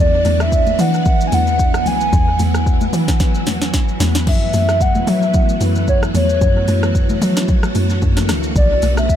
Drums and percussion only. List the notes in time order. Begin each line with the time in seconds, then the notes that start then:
0.25 open hi-hat, high conga, shaker
0.40 cross-stick, shaker
0.52 kick, shaker
0.67 high conga, shaker
0.79 open hi-hat, low conga, shaker
0.94 shaker
1.05 kick, low conga, shaker
1.21 shaker
1.32 open hi-hat, high conga, shaker
1.47 shaker
1.59 kick, shaker
1.74 cross-stick, shaker
1.86 open hi-hat, high conga, low conga, shaker
2.01 shaker
2.13 kick, low conga, shaker
2.39 open hi-hat, high conga, shaker
2.54 cross-stick, shaker
2.66 kick, shaker
2.81 high conga, shaker
2.93 open hi-hat, low conga, shaker
3.08 kick, snare, shaker
3.20 kick, snare, low conga, shaker
3.35 shaker
3.46 snare, open hi-hat, high conga, shaker
3.61 snare, shaker
3.74 kick, snare, shaker
3.88 shaker
4.00 snare, open hi-hat, high conga, low conga, shaker
4.15 snare, shaker
4.27 kick, crash, low conga
4.53 open hi-hat, high conga, shaker
4.69 cross-stick, shaker
4.81 kick, shaker
4.95 high conga, shaker
5.07 open hi-hat, low conga, shaker
5.22 shaker
5.34 kick, low conga, shaker
5.49 shaker
5.61 open hi-hat, high conga, shaker
5.75 shaker
5.88 kick, shaker
6.03 cross-stick, shaker
6.14 open hi-hat, high conga, low conga, shaker
6.29 shaker
6.41 kick, low conga, shaker
6.68 open hi-hat, high conga, shaker
6.83 cross-stick, shaker
6.95 kick, shaker
7.09 high conga, shaker
7.22 open hi-hat, low conga, shaker
7.37 snare, shaker
7.48 kick, low conga, shaker
7.63 cross-stick, shaker
7.75 open hi-hat, high conga, shaker
7.90 shaker
8.02 kick, shaker
8.17 snare, shaker
8.29 cross-stick, snare, open hi-hat, high conga, low conga, shaker
8.43 shaker
8.56 kick, low conga, shaker
8.82 open hi-hat, high conga, shaker
8.97 cross-stick, shaker
9.09 kick, shaker